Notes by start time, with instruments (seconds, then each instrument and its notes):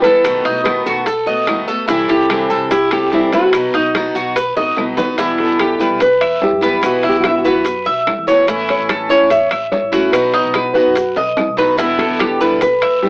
0.02 steel-string acoustic guitar G3 B3 E4, cuban tres A4, nylon-string guitar B4, high bongo, high conga, high timbale, short guiro, maracas
0.24 upright bass B1, steel-string acoustic guitar B2 D#3 A3 B3 F#4, high bongo, high conga, high timbale, long guiro, claves, maracas
0.45 upright bass B1, steel-string acoustic guitar A3 B3 F#4, cuban tres D#4, high bongo, high conga, high timbale, maracas
0.64 steel-string acoustic guitar B2 D#3 A3 B3 F#4, nylon-string guitar B4, high bongo, high conga, high timbale, low timbale, short guiro, claves, maracas
0.86 upright bass B1, cuban tres F#4, nylon-string guitar A4, high bongo, high conga, short guiro, maracas
1.06 cuban tres A4, muted steel-string acoustic guitar stroke, high bongo, high conga, high timbale, long guiro, maracas
1.26 steel-string acoustic guitar A3 B3 F#4, cuban tres D#5, high conga, maracas
1.47 steel-string acoustic guitar B2 D#3 A3 B3 F#4, high bongo, low bongo, high conga, high timbale, low timbale, short guiro, claves, maracas
1.68 steel-string acoustic guitar A3 B3 F#4, cuban tres A4, high bongo, high conga, short guiro, maracas
1.88 upright bass C2, steel-string acoustic guitar C3 E3 G3 C4 E4 A4, cuban tres E4, nylon-string guitar E4, high bongo, high conga, high timbale, long guiro, maracas
2.09 upright bass C2, steel-string acoustic guitar G3 C4 E4 A4, cuban tres G4, high bongo, high conga, high timbale, maracas
2.30 steel-string acoustic guitar C3 E3 G3 C4 E4 A4, high bongo, high conga, high timbale, low timbale, short guiro, claves, maracas
2.50 upright bass C2, cuban tres A4, high bongo, high conga, short guiro, maracas
2.71 cuban tres E4, nylon-string guitar G4, muted steel-string acoustic guitar stroke, high bongo, high conga, high timbale, long guiro, maracas
2.91 steel-string acoustic guitar G3 C4 E4 A4, cuban tres G4, nylon-string guitar G4, high conga, high timbale, claves, maracas
3.12 steel-string acoustic guitar C3 E3 G3 C4 E4 A4, nylon-string guitar E4, high bongo, low bongo, high conga, low timbale, short guiro, maracas
3.32 steel-string acoustic guitar G3 C4 E4 A4, nylon-string guitar F#4, cuban tres B4, high bongo, high conga, high timbale, short guiro, maracas
3.53 upright bass B1, steel-string acoustic guitar B2 F#3 B3 D#4 F#4, high bongo, high timbale, long guiro, claves, maracas
3.74 upright bass B1, steel-string acoustic guitar B3 D#4 F#4, cuban tres D#4, high bongo, high conga, high timbale, maracas
3.95 steel-string acoustic guitar B2 F#3 B3 D#4 F#4, high bongo, high conga, high timbale, low timbale, short guiro, claves, maracas
4.15 upright bass B1, cuban tres F#4, high bongo, high conga, short guiro, maracas
4.36 cuban tres B4, muted steel-string acoustic guitar stroke, high bongo, high conga, high timbale, long guiro, maracas
4.56 upright bass A1, steel-string acoustic guitar B3 D#4 F#4, cuban tres D#5, high bongo, high conga, high timbale, maracas
4.76 upright bass B1, steel-string acoustic guitar B2 F#3 B3 D#4 F#4, high conga, high timbale, short guiro, claves, maracas
4.97 upright bass D#2, steel-string acoustic guitar B3 D#4 F#4, cuban tres B4, low bongo, low conga, low timbale, short guiro, maracas
5.18 upright bass E2, steel-string acoustic guitar B2 E3 G3 B3 E4, cuban tres E4, high bongo, high conga, high timbale, long guiro, maracas
5.38 nylon-string guitar A4, high bongo, high conga, high timbale, maracas
5.50 upright bass E2
5.59 cuban tres G4, high bongo, high conga, high timbale, low timbale, short guiro, claves, maracas
5.79 steel-string acoustic guitar E3 G3 B3 E4, cuban tres B4, high bongo, high conga, short guiro, maracas
5.90 upright bass B1
6.00 nylon-string guitar B4, muted steel-string acoustic guitar stroke, high bongo, high conga, high timbale, long guiro, maracas
6.21 upright bass E2, cuban tres E5, high conga, high timbale, claves, maracas
6.42 nylon-string guitar G4, high bongo, low bongo, high conga, low timbale, short guiro, maracas
6.52 upright bass F#2
6.61 steel-string acoustic guitar E3 G3 B3 E4, cuban tres B4, high bongo, high timbale, short guiro, maracas
6.82 upright bass B1, steel-string acoustic guitar B2 E3 B3 E4 F#4, nylon-string guitar F#4, high bongo, high conga, high timbale, long guiro, claves, maracas
7.03 cuban tres E4, high bongo, high conga, high timbale, maracas
7.09 nylon-string guitar G4
7.14 upright bass B1
7.20 nylon-string guitar F#4, high bongo, high timbale, low timbale
7.25 cuban tres E5, high conga, short guiro, claves, maracas
7.29 nylon-string guitar E4
7.38 nylon-string guitar F#4
7.44 steel-string acoustic guitar E3 B3 E4 F#4, nylon-string guitar F#4, cuban tres B4, high bongo, high conga, short guiro, maracas
7.55 upright bass F#2
7.64 muted steel-string acoustic guitar stroke, high bongo, high conga, high timbale, long guiro, maracas
7.86 upright bass B1, cuban tres E5, high conga, maracas
8.07 high bongo, low bongo, high conga, high timbale, low timbale, short guiro, claves, maracas
8.18 upright bass E2
8.27 steel-string acoustic guitar E3 B3 E4 F#4, cuban tres C#5, high bongo, short guiro, maracas
8.47 upright bass A1, steel-string acoustic guitar E3 A3 C#4 E4, cuban tres E4, high bongo, high conga, high timbale, long guiro, maracas
8.69 nylon-string guitar C#5, high bongo, high conga, high timbale, maracas
8.79 upright bass A1
8.89 cuban tres A4, high bongo, high conga, high timbale, low timbale, short guiro, claves, maracas
9.09 steel-string acoustic guitar A3 C#4 E4, cuban tres C#5, high bongo, high conga, short guiro, maracas
9.21 upright bass E2
9.30 nylon-string guitar E5, muted steel-string acoustic guitar stroke, high bongo, high conga, high timbale, long guiro, maracas
9.51 upright bass A1, cuban tres E5, high conga, high timbale, claves, maracas
9.72 nylon-string guitar C#5, high bongo, low bongo, high conga, low timbale, short guiro, maracas
9.82 upright bass A1
9.92 steel-string acoustic guitar A3 C#4 E4, cuban tres F#4, high bongo, high conga, high timbale, short guiro, maracas
10.12 upright bass B1, steel-string acoustic guitar B2 F#3 B3 D#4 F#4, nylon-string guitar B4, high bongo, high conga, high timbale, long guiro, claves, maracas
10.34 cuban tres D#4, high bongo, high conga, high timbale, maracas
10.44 upright bass B1
10.54 cuban tres B4, high bongo, high conga, high timbale, low timbale, short guiro, claves, maracas
10.74 steel-string acoustic guitar F#3 B3 D#4 F#4, cuban tres F#4, nylon-string guitar B4, high bongo, high conga, short guiro, maracas
10.86 upright bass F#2
10.95 muted steel-string acoustic guitar stroke, high bongo, high conga, high timbale, long guiro, maracas
11.16 upright bass B1, cuban tres D#5, high conga, high timbale, maracas
11.37 high bongo, low bongo, high conga, high timbale, short guiro, claves, maracas
11.48 upright bass B1
11.57 steel-string acoustic guitar F#3 B3 D#4 F#4, cuban tres B4, high bongo, high conga, low timbale, short guiro, maracas
11.77 upright bass E2, steel-string acoustic guitar B2 D3 G3 B3 E4, cuban tres E4, high bongo, high conga, high timbale, long guiro, maracas
11.99 nylon-string guitar A4, high bongo, high conga, high timbale, maracas
12.09 upright bass E2
12.19 cuban tres G4, high bongo, high conga, high timbale, low timbale, short guiro, claves, maracas
12.40 steel-string acoustic guitar D3 G3 B3 E4, cuban tres B4, high bongo, high conga, short guiro, maracas
12.51 upright bass B1
12.61 nylon-string guitar B4, muted steel-string acoustic guitar stroke, high bongo, high conga, high timbale, long guiro, maracas
12.82 upright bass E2, cuban tres E5, high conga, high timbale, claves, maracas
13.02 nylon-string guitar G4, high bongo, low bongo, high conga, low timbale, short guiro, maracas